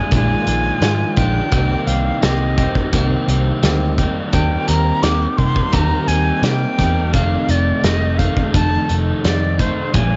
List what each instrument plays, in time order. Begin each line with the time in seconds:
Already playing: overdriven electric guitar A#2 F3 D4, clean electric guitar D#3 G#3 F4, flute G#5
0.11 picked electric bass A#1, clean electric guitar A#2 D#3 G#3 F4, overdriven electric guitar F3 D4, kick, closed hi-hat
0.15 flute G#5
0.47 picked electric bass A#1, overdriven electric guitar F3 D4, clean electric guitar G#3 F4, closed hi-hat
0.81 picked electric bass G#2, clean electric guitar D#3 G#3 F4, snare, closed hi-hat
1.16 picked electric bass A#1, clean electric guitar G#3 D#4 F4, overdriven electric guitar D4, flute G5, kick, closed hi-hat
1.21 overdriven electric guitar F3
1.51 picked electric bass C2, clean electric guitar C3 D#3 A#3 C4 G4, overdriven electric guitar G3 D#4, kick, closed hi-hat
1.87 picked electric bass C2, clean electric guitar A#3 C4 G4, flute F5, closed hi-hat
2.22 picked electric bass C2, overdriven electric guitar C3 G3 D#4, clean electric guitar D#3 A#3 C4 G4, flute D#5, snare, closed hi-hat
2.57 overdriven electric guitar G3 D#4, clean electric guitar A#3 C4 G4, kick, closed hi-hat
2.75 kick
2.93 picked electric bass C2, clean electric guitar C3 D#3 A#3 C4 G4, overdriven electric guitar G3 D#4, kick, closed hi-hat
3.28 picked electric bass C2, overdriven electric guitar G3 D#4, clean electric guitar A#3 C4 G4, closed hi-hat
3.63 picked electric bass D2, clean electric guitar D#3 A#3 C4 G4, snare, closed hi-hat
3.98 overdriven electric guitar G3 D#4, clean electric guitar A#3 C4 G4, kick, closed hi-hat
4.32 picked electric bass D#2, clean electric guitar D#3 G3 C4 G4 A#4, overdriven electric guitar A#3 D#4, flute G5, kick, closed hi-hat
4.67 picked electric bass D#2, clean electric guitar C4 G4 A#4, flute A#5, closed hi-hat
5.02 picked electric bass D#2, overdriven electric guitar D#3 A#3 D#4, clean electric guitar G3 C4 G4 A#4, flute D6, snare, closed hi-hat
5.37 picked electric bass C3, overdriven electric guitar G3 A#3 D#4, clean electric guitar C4 G4 A#4, flute C6, kick, closed hi-hat
5.56 kick
5.72 picked electric bass D#2, clean electric guitar D#3 G3 C4 G4 A#4, overdriven electric guitar A#3 D#4, flute A#5, kick, closed hi-hat
6.08 picked electric bass D#2, overdriven electric guitar G3 A#3 D#4, clean electric guitar C4 G4 A#4, flute G#5, closed hi-hat
6.42 picked electric bass C3, clean electric guitar G3 C4 G4 A#4, flute G5, snare, closed hi-hat
6.78 picked electric bass E2, overdriven electric guitar G3 A#3 D#4, clean electric guitar C4 G4 A#4, kick, snare, closed hi-hat
7.13 picked electric bass F1, clean electric guitar F2 C3 D#3 A3 D#4, flute F5, kick, closed hi-hat
7.48 picked electric bass F1, clean electric guitar D#3 A3 D#4, flute D5, closed hi-hat
7.84 picked electric bass F1, clean electric guitar C3 D#3 A3 D#4, flute D#5, snare, closed hi-hat
8.18 clean electric guitar D#3 A3 D#4, flute F5, kick, closed hi-hat
8.37 kick
8.53 picked electric bass F1, clean electric guitar F2 C3 D#3 A3 D#4, flute A5, kick, closed hi-hat
8.89 picked electric bass F1, clean electric guitar D#3 A3 D#4, closed hi-hat
9.24 picked electric bass F2, clean electric guitar C3 D#3 A3 D#4, flute D5, snare, closed hi-hat
9.58 clean electric guitar D#3 A3 D#4, flute C5, kick, closed hi-hat
9.93 picked electric bass A#1, clean electric guitar A#2 F3 G#3, overdriven electric guitar D4, flute G#5, kick, closed hi-hat